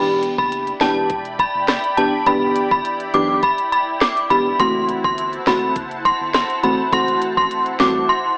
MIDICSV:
0, 0, Header, 1, 6, 480
1, 0, Start_track
1, 0, Key_signature, 1, "minor"
1, 0, Tempo, 582524
1, 1867, Time_signature, 4, 2, 24, 8
1, 6903, End_track
2, 0, Start_track
2, 0, Title_t, "Synth bell"
2, 0, Program_c, 0, 98
2, 316, Note_on_c, 0, 83, 82
2, 402, Note_off_c, 0, 83, 0
2, 667, Note_on_c, 0, 81, 85
2, 765, Note_off_c, 0, 81, 0
2, 1150, Note_on_c, 0, 83, 88
2, 1247, Note_off_c, 0, 83, 0
2, 1388, Note_on_c, 0, 83, 78
2, 1486, Note_off_c, 0, 83, 0
2, 1626, Note_on_c, 0, 81, 81
2, 1725, Note_off_c, 0, 81, 0
2, 1867, Note_on_c, 0, 83, 96
2, 1965, Note_off_c, 0, 83, 0
2, 2236, Note_on_c, 0, 83, 81
2, 2322, Note_off_c, 0, 83, 0
2, 2588, Note_on_c, 0, 86, 80
2, 2686, Note_off_c, 0, 86, 0
2, 2827, Note_on_c, 0, 83, 85
2, 2925, Note_off_c, 0, 83, 0
2, 3068, Note_on_c, 0, 83, 79
2, 3166, Note_off_c, 0, 83, 0
2, 3306, Note_on_c, 0, 86, 81
2, 3405, Note_off_c, 0, 86, 0
2, 3545, Note_on_c, 0, 83, 91
2, 3644, Note_off_c, 0, 83, 0
2, 3787, Note_on_c, 0, 84, 106
2, 3885, Note_off_c, 0, 84, 0
2, 4156, Note_on_c, 0, 84, 79
2, 4243, Note_off_c, 0, 84, 0
2, 4510, Note_on_c, 0, 83, 83
2, 4607, Note_off_c, 0, 83, 0
2, 4987, Note_on_c, 0, 84, 84
2, 5085, Note_off_c, 0, 84, 0
2, 5228, Note_on_c, 0, 84, 86
2, 5326, Note_off_c, 0, 84, 0
2, 5467, Note_on_c, 0, 83, 78
2, 5565, Note_off_c, 0, 83, 0
2, 5710, Note_on_c, 0, 84, 113
2, 5807, Note_off_c, 0, 84, 0
2, 6075, Note_on_c, 0, 84, 86
2, 6162, Note_off_c, 0, 84, 0
2, 6428, Note_on_c, 0, 86, 81
2, 6526, Note_off_c, 0, 86, 0
2, 6667, Note_on_c, 0, 84, 90
2, 6765, Note_off_c, 0, 84, 0
2, 6903, End_track
3, 0, Start_track
3, 0, Title_t, "Analog synth pad"
3, 0, Program_c, 1, 89
3, 0, Note_on_c, 1, 64, 81
3, 0, Note_on_c, 1, 74, 74
3, 0, Note_on_c, 1, 79, 73
3, 0, Note_on_c, 1, 83, 88
3, 3754, Note_off_c, 1, 79, 0
3, 3755, Note_off_c, 1, 74, 0
3, 3755, Note_off_c, 1, 83, 0
3, 3785, Note_on_c, 1, 78, 70
3, 3787, Note_on_c, 1, 72, 70
3, 3787, Note_on_c, 1, 81, 87
3, 6903, Note_off_c, 1, 64, 0
3, 6903, Note_off_c, 1, 72, 0
3, 6903, Note_off_c, 1, 78, 0
3, 6903, Note_off_c, 1, 81, 0
3, 6903, End_track
4, 0, Start_track
4, 0, Title_t, "Synth stab"
4, 0, Program_c, 2, 62
4, 0, Note_on_c, 2, 52, 96
4, 0, Note_on_c, 2, 59, 89
4, 0, Note_on_c, 2, 62, 89
4, 0, Note_on_c, 2, 67, 112
4, 613, Note_off_c, 2, 52, 0
4, 613, Note_off_c, 2, 59, 0
4, 615, Note_off_c, 2, 62, 0
4, 615, Note_off_c, 2, 67, 0
4, 664, Note_on_c, 2, 52, 82
4, 667, Note_on_c, 2, 59, 75
4, 668, Note_on_c, 2, 62, 75
4, 670, Note_on_c, 2, 67, 86
4, 888, Note_off_c, 2, 52, 0
4, 889, Note_off_c, 2, 59, 0
4, 890, Note_off_c, 2, 62, 0
4, 891, Note_off_c, 2, 67, 0
4, 1627, Note_on_c, 2, 52, 73
4, 1628, Note_on_c, 2, 59, 69
4, 1630, Note_on_c, 2, 62, 73
4, 1631, Note_on_c, 2, 67, 86
4, 1762, Note_off_c, 2, 52, 0
4, 1762, Note_off_c, 2, 59, 0
4, 1763, Note_off_c, 2, 62, 0
4, 1764, Note_off_c, 2, 67, 0
4, 1866, Note_on_c, 2, 52, 100
4, 1868, Note_on_c, 2, 59, 89
4, 1870, Note_on_c, 2, 62, 91
4, 1871, Note_on_c, 2, 67, 110
4, 2533, Note_off_c, 2, 52, 0
4, 2534, Note_off_c, 2, 59, 0
4, 2534, Note_off_c, 2, 62, 0
4, 2535, Note_off_c, 2, 67, 0
4, 2585, Note_on_c, 2, 52, 81
4, 2587, Note_on_c, 2, 59, 74
4, 2589, Note_on_c, 2, 62, 75
4, 2590, Note_on_c, 2, 67, 91
4, 2808, Note_off_c, 2, 52, 0
4, 2809, Note_off_c, 2, 59, 0
4, 2810, Note_off_c, 2, 62, 0
4, 2811, Note_off_c, 2, 67, 0
4, 3545, Note_on_c, 2, 52, 75
4, 3547, Note_on_c, 2, 59, 71
4, 3549, Note_on_c, 2, 62, 68
4, 3549, Note_on_c, 2, 67, 87
4, 3681, Note_off_c, 2, 52, 0
4, 3682, Note_off_c, 2, 59, 0
4, 3683, Note_off_c, 2, 62, 0
4, 3683, Note_off_c, 2, 67, 0
4, 3786, Note_on_c, 2, 52, 98
4, 3788, Note_on_c, 2, 57, 91
4, 3790, Note_on_c, 2, 60, 88
4, 3791, Note_on_c, 2, 66, 110
4, 4453, Note_off_c, 2, 52, 0
4, 4453, Note_off_c, 2, 57, 0
4, 4454, Note_off_c, 2, 60, 0
4, 4455, Note_off_c, 2, 66, 0
4, 4505, Note_on_c, 2, 52, 80
4, 4506, Note_on_c, 2, 57, 75
4, 4508, Note_on_c, 2, 60, 77
4, 4509, Note_on_c, 2, 66, 88
4, 4728, Note_off_c, 2, 52, 0
4, 4729, Note_off_c, 2, 57, 0
4, 4729, Note_off_c, 2, 60, 0
4, 4730, Note_off_c, 2, 66, 0
4, 5464, Note_on_c, 2, 52, 77
4, 5466, Note_on_c, 2, 57, 70
4, 5467, Note_on_c, 2, 60, 71
4, 5470, Note_on_c, 2, 66, 80
4, 5600, Note_off_c, 2, 52, 0
4, 5601, Note_off_c, 2, 57, 0
4, 5602, Note_off_c, 2, 60, 0
4, 5603, Note_off_c, 2, 66, 0
4, 5704, Note_on_c, 2, 52, 99
4, 5706, Note_on_c, 2, 57, 95
4, 5708, Note_on_c, 2, 60, 90
4, 5709, Note_on_c, 2, 66, 108
4, 6372, Note_off_c, 2, 52, 0
4, 6373, Note_off_c, 2, 57, 0
4, 6374, Note_off_c, 2, 60, 0
4, 6374, Note_off_c, 2, 66, 0
4, 6425, Note_on_c, 2, 52, 84
4, 6426, Note_on_c, 2, 57, 75
4, 6428, Note_on_c, 2, 60, 71
4, 6430, Note_on_c, 2, 66, 90
4, 6648, Note_off_c, 2, 52, 0
4, 6649, Note_off_c, 2, 57, 0
4, 6650, Note_off_c, 2, 60, 0
4, 6651, Note_off_c, 2, 66, 0
4, 6903, End_track
5, 0, Start_track
5, 0, Title_t, "Sub bass"
5, 0, Program_c, 3, 38
5, 0, Note_on_c, 3, 28, 119
5, 246, Note_off_c, 3, 28, 0
5, 317, Note_on_c, 3, 30, 98
5, 603, Note_off_c, 3, 30, 0
5, 666, Note_on_c, 3, 28, 91
5, 862, Note_off_c, 3, 28, 0
5, 906, Note_on_c, 3, 28, 91
5, 1205, Note_off_c, 3, 28, 0
5, 1274, Note_on_c, 3, 30, 94
5, 1469, Note_off_c, 3, 30, 0
5, 1627, Note_on_c, 3, 28, 97
5, 1731, Note_off_c, 3, 28, 0
5, 1866, Note_on_c, 3, 28, 96
5, 2062, Note_off_c, 3, 28, 0
5, 2235, Note_on_c, 3, 31, 103
5, 2327, Note_off_c, 3, 31, 0
5, 2587, Note_on_c, 3, 35, 83
5, 2782, Note_off_c, 3, 35, 0
5, 3547, Note_on_c, 3, 28, 91
5, 3742, Note_off_c, 3, 28, 0
5, 3787, Note_on_c, 3, 30, 100
5, 4086, Note_off_c, 3, 30, 0
5, 4156, Note_on_c, 3, 31, 92
5, 4442, Note_off_c, 3, 31, 0
5, 4506, Note_on_c, 3, 30, 101
5, 4702, Note_off_c, 3, 30, 0
5, 4746, Note_on_c, 3, 30, 90
5, 5045, Note_off_c, 3, 30, 0
5, 5114, Note_on_c, 3, 31, 90
5, 5309, Note_off_c, 3, 31, 0
5, 5467, Note_on_c, 3, 30, 87
5, 5571, Note_off_c, 3, 30, 0
5, 5707, Note_on_c, 3, 30, 116
5, 5902, Note_off_c, 3, 30, 0
5, 6076, Note_on_c, 3, 33, 96
5, 6167, Note_off_c, 3, 33, 0
5, 6427, Note_on_c, 3, 36, 92
5, 6622, Note_off_c, 3, 36, 0
5, 6903, End_track
6, 0, Start_track
6, 0, Title_t, "Drums"
6, 187, Note_on_c, 9, 42, 95
6, 269, Note_off_c, 9, 42, 0
6, 316, Note_on_c, 9, 36, 101
6, 399, Note_off_c, 9, 36, 0
6, 430, Note_on_c, 9, 42, 86
6, 512, Note_off_c, 9, 42, 0
6, 554, Note_on_c, 9, 42, 51
6, 636, Note_off_c, 9, 42, 0
6, 666, Note_on_c, 9, 36, 92
6, 667, Note_on_c, 9, 38, 120
6, 667, Note_on_c, 9, 42, 69
6, 748, Note_off_c, 9, 36, 0
6, 749, Note_off_c, 9, 42, 0
6, 750, Note_off_c, 9, 38, 0
6, 904, Note_on_c, 9, 42, 79
6, 906, Note_on_c, 9, 36, 96
6, 987, Note_off_c, 9, 42, 0
6, 989, Note_off_c, 9, 36, 0
6, 1032, Note_on_c, 9, 42, 54
6, 1114, Note_off_c, 9, 42, 0
6, 1146, Note_on_c, 9, 36, 96
6, 1149, Note_on_c, 9, 42, 78
6, 1229, Note_off_c, 9, 36, 0
6, 1231, Note_off_c, 9, 42, 0
6, 1386, Note_on_c, 9, 42, 77
6, 1387, Note_on_c, 9, 37, 92
6, 1387, Note_on_c, 9, 38, 120
6, 1468, Note_off_c, 9, 42, 0
6, 1470, Note_off_c, 9, 37, 0
6, 1470, Note_off_c, 9, 38, 0
6, 1515, Note_on_c, 9, 42, 49
6, 1598, Note_off_c, 9, 42, 0
6, 1627, Note_on_c, 9, 42, 74
6, 1710, Note_off_c, 9, 42, 0
6, 1866, Note_on_c, 9, 36, 124
6, 1866, Note_on_c, 9, 42, 81
6, 1948, Note_off_c, 9, 42, 0
6, 1949, Note_off_c, 9, 36, 0
6, 2107, Note_on_c, 9, 42, 94
6, 2189, Note_off_c, 9, 42, 0
6, 2236, Note_on_c, 9, 36, 104
6, 2318, Note_off_c, 9, 36, 0
6, 2348, Note_on_c, 9, 42, 81
6, 2430, Note_off_c, 9, 42, 0
6, 2472, Note_on_c, 9, 42, 55
6, 2555, Note_off_c, 9, 42, 0
6, 2586, Note_on_c, 9, 42, 69
6, 2669, Note_off_c, 9, 42, 0
6, 2825, Note_on_c, 9, 42, 73
6, 2827, Note_on_c, 9, 36, 95
6, 2907, Note_off_c, 9, 42, 0
6, 2909, Note_off_c, 9, 36, 0
6, 2952, Note_on_c, 9, 42, 56
6, 3035, Note_off_c, 9, 42, 0
6, 3069, Note_on_c, 9, 42, 77
6, 3151, Note_off_c, 9, 42, 0
6, 3306, Note_on_c, 9, 42, 76
6, 3308, Note_on_c, 9, 37, 96
6, 3308, Note_on_c, 9, 38, 113
6, 3388, Note_off_c, 9, 42, 0
6, 3390, Note_off_c, 9, 37, 0
6, 3390, Note_off_c, 9, 38, 0
6, 3436, Note_on_c, 9, 42, 49
6, 3518, Note_off_c, 9, 42, 0
6, 3547, Note_on_c, 9, 42, 76
6, 3548, Note_on_c, 9, 36, 84
6, 3630, Note_off_c, 9, 36, 0
6, 3630, Note_off_c, 9, 42, 0
6, 3787, Note_on_c, 9, 36, 125
6, 3787, Note_on_c, 9, 42, 79
6, 3869, Note_off_c, 9, 36, 0
6, 3869, Note_off_c, 9, 42, 0
6, 4027, Note_on_c, 9, 42, 93
6, 4109, Note_off_c, 9, 42, 0
6, 4156, Note_on_c, 9, 36, 110
6, 4239, Note_off_c, 9, 36, 0
6, 4269, Note_on_c, 9, 42, 86
6, 4351, Note_off_c, 9, 42, 0
6, 4392, Note_on_c, 9, 42, 55
6, 4475, Note_off_c, 9, 42, 0
6, 4506, Note_on_c, 9, 36, 94
6, 4507, Note_on_c, 9, 42, 70
6, 4508, Note_on_c, 9, 38, 125
6, 4588, Note_off_c, 9, 36, 0
6, 4589, Note_off_c, 9, 42, 0
6, 4590, Note_off_c, 9, 38, 0
6, 4745, Note_on_c, 9, 42, 75
6, 4747, Note_on_c, 9, 36, 97
6, 4827, Note_off_c, 9, 42, 0
6, 4829, Note_off_c, 9, 36, 0
6, 4872, Note_on_c, 9, 42, 54
6, 4955, Note_off_c, 9, 42, 0
6, 4987, Note_on_c, 9, 36, 90
6, 4989, Note_on_c, 9, 42, 75
6, 5069, Note_off_c, 9, 36, 0
6, 5071, Note_off_c, 9, 42, 0
6, 5226, Note_on_c, 9, 42, 81
6, 5228, Note_on_c, 9, 37, 98
6, 5228, Note_on_c, 9, 38, 118
6, 5308, Note_off_c, 9, 42, 0
6, 5310, Note_off_c, 9, 37, 0
6, 5310, Note_off_c, 9, 38, 0
6, 5355, Note_on_c, 9, 42, 50
6, 5438, Note_off_c, 9, 42, 0
6, 5467, Note_on_c, 9, 42, 79
6, 5550, Note_off_c, 9, 42, 0
6, 5706, Note_on_c, 9, 36, 126
6, 5707, Note_on_c, 9, 42, 79
6, 5789, Note_off_c, 9, 36, 0
6, 5790, Note_off_c, 9, 42, 0
6, 5836, Note_on_c, 9, 42, 57
6, 5918, Note_off_c, 9, 42, 0
6, 5947, Note_on_c, 9, 42, 91
6, 6029, Note_off_c, 9, 42, 0
6, 6076, Note_on_c, 9, 36, 102
6, 6158, Note_off_c, 9, 36, 0
6, 6189, Note_on_c, 9, 42, 84
6, 6272, Note_off_c, 9, 42, 0
6, 6312, Note_on_c, 9, 42, 51
6, 6395, Note_off_c, 9, 42, 0
6, 6426, Note_on_c, 9, 38, 117
6, 6426, Note_on_c, 9, 42, 68
6, 6508, Note_off_c, 9, 38, 0
6, 6508, Note_off_c, 9, 42, 0
6, 6903, End_track
0, 0, End_of_file